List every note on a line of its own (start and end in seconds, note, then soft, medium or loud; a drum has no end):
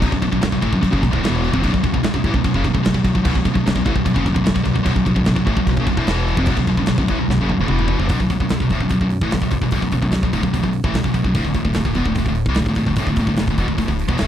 0.01 0.10 B1 medium
0.01 0.11 B1 medium
0.01 0.11 F#2 medium
0.01 kick loud
0.01 crash medium
0.11 0.21 B1 medium
0.11 0.22 B1 medium
0.11 0.21 F#2 medium
0.11 kick medium
0.22 0.30 B1 medium
0.22 0.32 B1 medium
0.22 0.31 F#2 medium
0.22 kick medium
0.22 crash medium
0.31 0.40 B1 medium
0.31 0.42 B1 medium
0.31 0.40 F#2 medium
0.31 kick medium
0.41 0.51 B1 medium
0.41 0.52 B1 medium
0.41 0.52 F#2 medium
0.41 snare loud
0.41 crash medium
0.52 0.61 B1 medium
0.52 0.62 B1 medium
0.52 0.61 F#2 medium
0.52 kick medium
0.61 0.72 A1 loud
0.61 0.72 A2 medium
0.61 0.72 E3 medium
0.61 kick medium
0.61 crash medium
0.72 0.82 B1 medium
0.72 0.80 B1 medium
0.72 0.82 F#2 medium
0.72 kick medium
0.81 0.91 B1 medium
0.81 0.92 B1 medium
0.81 0.90 F#2 medium
0.81 kick medium
0.81 crash medium
0.91 1.02 F#1 medium
0.91 1.02 F#2 medium
0.91 1.02 C#3 loud
0.91 kick medium
1.03 1.11 B1 medium
1.03 1.13 B1 medium
1.03 1.11 F#2 medium
1.03 kick medium
1.03 crash medium
1.11 1.23 D1 medium
1.11 1.22 D2 medium
1.11 1.22 A2 loud
1.11 kick medium
1.23 1.53 E1 medium
1.23 1.53 E2 medium
1.23 1.53 B2 medium
1.23 1.53 E3 medium
1.23 snare loud
1.23 crash medium
1.44 crash medium
1.53 1.63 F1 medium
1.53 1.62 F2 medium
1.53 1.62 C3 medium
1.53 kick loud
1.62 1.71 B1 loud
1.62 1.73 B1 medium
1.62 1.72 F#2 loud
1.62 kick loud
1.62 crash medium
1.72 1.82 B1 medium
1.72 1.83 B1 medium
1.72 1.83 F#2 medium
1.72 kick medium
1.83 1.93 B1 medium
1.83 1.92 B1 medium
1.83 1.93 F#2 medium
1.83 kick medium
1.83 crash medium
1.94 2.02 B1 medium
1.94 2.03 B1 medium
1.94 2.02 F#2 medium
1.94 kick medium
2.03 2.14 B1 medium
2.03 2.13 B1 medium
2.03 2.14 F#2 medium
2.03 snare loud
2.03 crash medium
2.14 2.24 B1 medium
2.14 2.25 B1 medium
2.14 2.25 F#2 medium
2.14 kick medium
2.24 2.33 A1 loud
2.24 2.34 A2 medium
2.24 2.34 E3 loud
2.24 kick medium
2.24 crash medium
2.34 2.43 B1 medium
2.34 2.45 F#2 medium
2.34 kick medium
2.44 2.54 B1 medium
2.44 2.55 B1 medium
2.44 2.54 F#2 medium
2.44 kick medium
2.44 crash medium
2.54 2.64 F#1 medium
2.54 2.64 F#2 medium
2.54 2.65 C#3 loud
2.54 kick medium
2.64 2.74 B1 medium
2.64 2.73 B1 medium
2.64 2.73 F#2 medium
2.64 kick medium
2.64 crash medium
2.74 2.82 B1 medium
2.74 2.84 B1 medium
2.74 2.82 F#2 medium
2.74 kick medium
2.83 2.93 B1 medium
2.83 2.94 B1 medium
2.83 2.93 F#2 medium
2.83 snare loud
2.83 crash medium
2.94 3.03 B1 medium
2.94 3.03 F#2 medium
2.94 kick medium
3.04 3.14 B1 medium
3.04 3.14 F#2 medium
3.04 kick medium
3.04 crash medium
3.15 3.23 B1 medium
3.15 3.24 B1 medium
3.15 3.25 F#2 medium
3.15 kick medium
3.24 3.34 B1 loud
3.24 3.34 F#2 medium
3.24 kick loud
3.24 crash loud
3.35 3.45 B1 medium
3.35 3.44 F#2 medium
3.35 kick medium
3.45 3.55 B1 medium
3.45 3.53 B1 medium
3.45 3.53 F#2 medium
3.45 kick medium
3.45 crash medium
3.54 3.65 B1 medium
3.54 3.65 F#2 medium
3.54 kick medium
3.66 3.75 B1 medium
3.66 3.76 F#2 medium
3.66 snare loud
3.66 crash medium
3.76 3.85 B1 medium
3.76 3.86 F#2 medium
3.76 kick medium
3.86 3.95 A1 loud
3.86 3.95 A2 medium
3.86 3.95 E3 loud
3.86 kick medium
3.86 crash medium
3.95 4.04 B1 medium
3.95 4.05 B1 medium
3.95 4.05 F#2 medium
3.95 kick medium
4.05 4.14 B1 medium
4.05 4.15 B1 medium
4.05 4.13 F#2 medium
4.05 kick medium
4.05 crash medium
4.14 4.25 F#1 medium
4.14 4.25 F#2 medium
4.14 4.25 C#3 loud
4.14 kick medium
4.25 4.33 B1 medium
4.25 4.35 B1 medium
4.25 4.34 F#2 medium
4.25 kick medium
4.25 crash medium
4.34 4.43 B1 medium
4.34 4.46 B1 medium
4.34 4.43 F#2 medium
4.34 kick medium
4.44 4.53 B1 medium
4.44 4.54 F#2 medium
4.44 snare loud
4.44 crash medium
4.48 4.55 B1 medium
4.54 4.63 B1 medium
4.54 4.65 B1 medium
4.54 4.63 F#2 medium
4.54 kick medium
4.64 4.72 B1 medium
4.64 4.75 B1 medium
4.64 4.73 F#2 medium
4.64 kick medium
4.64 crash medium
4.74 4.82 B1 medium
4.74 4.85 B1 medium
4.74 4.83 F#2 medium
4.74 kick medium
4.83 4.93 B1 medium
4.83 4.95 B1 loud
4.83 4.93 F#2 medium
4.83 kick loud
4.83 crash medium
4.94 5.04 B1 medium
4.94 5.05 B1 medium
4.94 5.04 F#2 medium
4.94 kick medium
5.05 5.14 B1 medium
5.05 5.16 B1 medium
5.05 5.14 F#2 medium
5.05 kick medium
5.05 crash medium
5.15 5.26 B1 medium
5.15 5.26 F#2 medium
5.15 kick medium
5.25 5.36 B1 medium
5.25 5.34 B1 medium
5.25 5.36 F#2 medium
5.25 snare loud
5.25 crash medium
5.35 5.45 B1 medium
5.35 5.46 B1 medium
5.35 5.47 F#2 medium
5.35 kick medium
5.46 5.56 A1 loud
5.46 5.56 A2 medium
5.46 5.57 E3 loud
5.46 kick medium
5.46 crash medium
5.57 5.66 B1 medium
5.57 5.68 B1 medium
5.57 5.68 F#2 medium
5.57 kick medium
5.66 5.76 B1 medium
5.66 5.78 B1 medium
5.66 5.78 F#2 medium
5.66 kick medium
5.66 crash medium
5.77 5.87 F#1 loud
5.77 5.88 F#2 medium
5.77 5.88 C#3 loud
5.77 kick medium
5.87 5.97 B1 medium
5.87 5.97 F#2 medium
5.87 kick medium
5.87 crash medium
5.97 6.07 D1 loud
5.97 6.07 D2 medium
5.97 6.07 A2 loud
5.97 kick medium
6.07 6.36 E1 medium
6.07 6.37 E2 medium
6.07 6.38 B2 medium
6.07 6.38 E3 medium
6.07 snare loud
6.07 crash medium
6.28 crash medium
6.37 6.47 F1 medium
6.37 6.47 F2 medium
6.37 6.48 C3 loud
6.37 kick loud
6.46 6.56 B1 loud
6.46 6.58 B1 medium
6.46 6.57 F#2 loud
6.46 kick loud
6.46 crash medium
6.57 6.67 B1 medium
6.57 6.68 B1 medium
6.57 6.68 F#2 medium
6.57 kick medium
6.67 6.77 B1 medium
6.67 6.78 F#2 medium
6.67 kick medium
6.67 crash medium
6.77 6.87 B1 medium
6.77 6.88 F#2 medium
6.77 kick medium
6.86 6.98 B1 medium
6.86 6.97 F#2 medium
6.86 snare loud
6.86 crash medium
6.98 7.08 B1 medium
6.98 7.09 B1 medium
6.98 7.09 F#2 medium
6.98 kick medium
7.08 7.17 A1 medium
7.08 7.19 A2 medium
7.08 7.19 E3 loud
7.08 kick medium
7.08 crash medium
7.17 7.28 B1 medium
7.17 7.29 B1 medium
7.17 7.29 F#2 medium
7.28 7.37 B1 medium
7.28 7.40 B1 medium
7.28 7.40 F#2 medium
7.28 snare medium
7.37 7.48 F#1 medium
7.37 7.50 F#2 medium
7.37 7.50 C#3 medium
7.49 7.58 B1 medium
7.49 7.60 B1 medium
7.49 7.60 F#2 medium
7.49 high tom medium
7.59 7.69 D1 loud
7.59 7.68 D2 medium
7.59 7.68 A2 medium
7.68 7.98 E1 medium
7.68 7.99 E2 medium
7.68 7.99 B2 medium
7.68 7.99 E3 medium
7.68 mid tom medium
7.79 mid tom medium
7.88 floor tom loud
7.99 8.09 F1 medium
7.99 8.09 F2 medium
7.99 8.09 C3 medium
7.99 floor tom medium
8.09 8.19 B1 medium
8.09 8.20 B1 medium
8.09 8.19 F#2 medium
8.09 kick loud
8.09 open hi-hat medium
8.20 8.30 B1 medium
8.20 8.29 B1 medium
8.20 8.30 F#2 medium
8.20 kick medium
8.30 8.40 B1 medium
8.30 8.39 B1 medium
8.30 8.41 F#2 medium
8.30 kick medium
8.30 open hi-hat soft
8.40 8.50 B1 medium
8.40 8.50 F#2 medium
8.40 kick medium
8.49 8.60 B1 medium
8.49 8.61 B1 medium
8.49 8.60 F#2 medium
8.49 snare loud
8.49 open hi-hat medium
8.60 8.69 B1 medium
8.60 8.71 B1 medium
8.60 8.72 F#2 medium
8.60 kick medium
8.70 8.80 D1 medium
8.70 8.81 D2 medium
8.70 8.81 A2 medium
8.70 kick medium
8.70 open hi-hat soft
8.80 8.90 B1 medium
8.80 8.91 F#2 medium
8.80 kick medium
8.89 9.00 B1 medium
8.89 9.01 B1 medium
8.89 9.00 F#2 medium
8.89 kick medium
8.89 open hi-hat medium
9.01 9.20 B1 medium
9.01 9.18 B1 medium
9.01 9.18 F#2 medium
9.01 kick medium
9.10 open hi-hat soft
9.21 9.31 A1 medium
9.21 9.32 A2 medium
9.21 9.32 E3 medium
9.21 kick loud
9.31 9.41 B1 medium
9.31 9.42 F#2 medium
9.31 snare loud
9.31 open hi-hat medium
9.42 9.51 B1 medium
9.42 9.50 B1 medium
9.42 9.50 F#2 medium
9.42 kick medium
9.51 9.61 B1 medium
9.51 9.62 B1 medium
9.51 9.62 F#2 medium
9.51 kick medium
9.51 open hi-hat medium
9.62 9.72 B1 medium
9.62 9.71 B1 medium
9.62 9.72 F#2 medium
9.62 kick medium
9.71 9.82 B1 medium
9.71 9.82 B1 loud
9.71 9.82 F#2 medium
9.71 kick loud
9.71 open hi-hat medium
9.82 9.92 B1 medium
9.82 9.91 B1 medium
9.82 9.92 F#2 medium
9.82 kick medium
9.91 10.02 B1 medium
9.91 10.01 B1 medium
9.91 10.01 F#2 medium
9.91 kick medium
9.91 open hi-hat medium
10.02 10.11 B1 medium
10.02 10.10 B1 medium
10.02 10.11 F#2 medium
10.02 kick medium
10.11 10.21 B1 medium
10.11 10.22 B1 medium
10.11 10.23 F#2 medium
10.11 snare medium
10.11 open hi-hat medium
10.23 10.33 B1 medium
10.23 10.33 F#2 medium
10.23 kick medium
10.33 10.43 D1 medium
10.33 10.42 D2 medium
10.33 10.43 A2 medium
10.33 kick medium
10.33 open hi-hat medium
10.42 10.52 B1 medium
10.42 10.53 B1 medium
10.42 10.52 F#2 medium
10.42 kick medium
10.53 10.62 B1 medium
10.53 10.64 B1 medium
10.53 10.63 F#2 medium
10.53 kick medium
10.53 open hi-hat medium
10.63 10.80 B1 medium
10.63 10.83 B1 medium
10.63 10.80 F#2 medium
10.63 kick medium
10.73 open hi-hat medium
10.84 10.92 A1 medium
10.84 10.94 A2 medium
10.84 10.95 E3 loud
10.84 kick loud
10.93 11.03 B1 medium
10.93 11.04 B1 medium
10.93 11.04 F#2 medium
10.93 snare loud
10.93 open hi-hat medium
11.04 11.14 B1 medium
11.04 11.13 B1 medium
11.04 11.13 F#2 medium
11.04 kick medium
11.14 11.25 B1 medium
11.14 11.24 B1 medium
11.14 11.25 F#2 medium
11.14 kick medium
11.14 open hi-hat soft
11.24 11.34 B1 medium
11.24 11.35 B1 medium
11.24 11.35 F#2 medium
11.24 kick medium
11.34 11.44 D1 medium
11.34 11.44 D2 medium
11.34 11.44 A2 medium
11.34 kick loud
11.34 open hi-hat medium
11.45 11.54 D1 medium
11.45 11.54 D2 medium
11.45 11.53 A2 medium
11.45 kick medium
11.54 11.64 D1 medium
11.54 11.64 D2 medium
11.54 11.63 A2 medium
11.54 kick medium
11.54 open hi-hat soft
11.64 11.75 D1 medium
11.64 11.74 D2 medium
11.64 11.75 A2 medium
11.64 kick medium
11.73 11.85 D1 medium
11.73 11.85 D2 medium
11.73 11.85 A2 medium
11.73 snare medium
11.73 open hi-hat medium
11.85 11.95 D1 medium
11.85 11.95 D2 medium
11.85 11.97 A2 medium
11.85 kick medium
11.94 12.05 E1 medium
11.94 12.06 E2 medium
11.94 12.06 B2 medium
11.94 kick medium
11.94 open hi-hat soft
12.05 12.17 D2 medium
12.05 12.17 A2 medium
12.05 kick medium
12.15 12.25 D1 medium
12.15 12.27 D2 medium
12.15 12.27 A2 medium
12.15 kick medium
12.15 open hi-hat medium
12.26 12.45 D1 medium
12.26 12.44 D2 medium
12.26 12.44 A2 medium
12.26 kick medium
12.35 open hi-hat soft
12.46 12.56 C2 medium
12.46 12.58 C3 medium
12.46 12.58 G3 medium
12.46 kick loud
12.55 12.65 D1 medium
12.55 12.67 D2 medium
12.55 12.68 A2 medium
12.55 snare loud
12.55 open hi-hat medium
12.66 12.76 D1 medium
12.66 12.76 D2 medium
12.66 12.77 A2 medium
12.66 kick medium
12.75 12.87 D1 medium
12.75 12.86 D2 medium
12.75 12.87 A2 medium
12.75 kick medium
12.75 open hi-hat medium
12.87 12.96 D1 medium
12.87 12.97 D2 medium
12.87 12.98 A2 medium
12.87 kick medium
12.96 13.06 D1 medium
12.96 13.08 D2 loud
12.96 13.08 A2 loud
12.96 kick loud
12.96 open hi-hat medium
13.06 13.16 D1 medium
13.06 13.18 D2 medium
13.06 13.19 A2 medium
13.06 kick medium
13.16 13.27 D1 medium
13.16 13.28 D2 medium
13.16 kick medium
13.16 open hi-hat medium
13.21 13.28 A2 medium
13.27 13.37 D1 medium
13.27 13.38 D2 medium
13.27 13.39 A2 medium
13.27 kick medium
13.36 13.47 D1 medium
13.36 13.49 D2 medium
13.36 13.49 A2 medium
13.36 snare loud
13.36 open hi-hat medium
13.47 13.57 D1 medium
13.47 13.58 D2 medium
13.47 13.59 A2 medium
13.47 kick medium
13.57 13.67 E1 medium
13.57 13.68 E2 medium
13.57 13.68 B2 medium
13.57 kick medium
13.57 open hi-hat medium
13.68 13.77 D1 medium
13.68 13.77 D2 medium
13.68 13.77 A2 medium
13.68 kick medium
13.78 13.88 D1 medium
13.78 13.87 D2 medium
13.78 13.87 A2 medium
13.78 kick medium
13.78 open hi-hat medium
13.88 14.08 D1 medium
13.88 14.05 D2 medium
13.88 14.06 A2 medium
13.88 kick medium
13.99 open hi-hat medium
14.08 14.19 E1 medium
14.08 14.17 E2 medium
14.08 14.18 B2 loud
14.08 kick loud
14.18 14.27 D1 medium
14.18 14.27 D2 medium
14.18 14.27 A2 medium
14.18 snare loud
14.18 open hi-hat medium